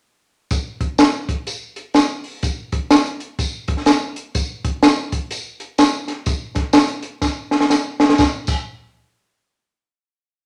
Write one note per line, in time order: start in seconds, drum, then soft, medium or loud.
0.51 kick loud
0.51 closed hi-hat medium
0.51 tambourine medium
0.81 kick medium
0.81 closed hi-hat medium
0.98 snare loud
0.98 closed hi-hat medium
0.98 tambourine medium
1.29 kick medium
1.29 closed hi-hat medium
1.47 closed hi-hat medium
1.47 tambourine medium
1.76 closed hi-hat medium
1.94 snare medium
1.94 closed hi-hat medium
1.94 tambourine medium
2.24 open hi-hat soft
2.43 kick medium
2.43 closed hi-hat medium
2.43 tambourine medium
2.72 kick medium
2.72 closed hi-hat medium
2.91 snare loud
2.91 closed hi-hat medium
2.91 tambourine medium
3.06 closed hi-hat medium
3.20 closed hi-hat medium
3.39 kick medium
3.39 closed hi-hat medium
3.39 tambourine medium
3.68 kick medium
3.68 closed hi-hat medium
3.77 snare soft
3.86 snare medium
3.86 closed hi-hat medium
3.86 tambourine medium
4.16 closed hi-hat medium
4.35 kick medium
4.35 closed hi-hat medium
4.35 tambourine medium
4.65 kick medium
4.65 closed hi-hat medium
4.83 snare loud
4.83 closed hi-hat medium
4.83 tambourine medium
5.12 kick medium
5.12 closed hi-hat medium
5.31 closed hi-hat medium
5.31 tambourine medium
5.60 closed hi-hat medium
5.78 snare medium
5.78 closed hi-hat medium
5.78 tambourine medium
6.08 snare soft
6.08 closed hi-hat medium
6.26 kick loud
6.26 closed hi-hat medium
6.26 tambourine medium
6.55 kick medium
6.55 snare soft
6.55 closed hi-hat medium
6.73 snare loud
6.73 closed hi-hat medium
6.73 tambourine medium
6.88 closed hi-hat medium
7.03 closed hi-hat medium
7.22 kick medium
7.22 snare medium
7.22 tambourine medium
7.51 snare medium
7.61 snare medium
7.70 snare medium
7.70 tambourine medium
8.00 snare medium
8.09 snare medium
8.18 kick loud
8.18 snare medium
8.18 tambourine medium
8.47 kick medium
8.47 crash medium
8.47 tambourine medium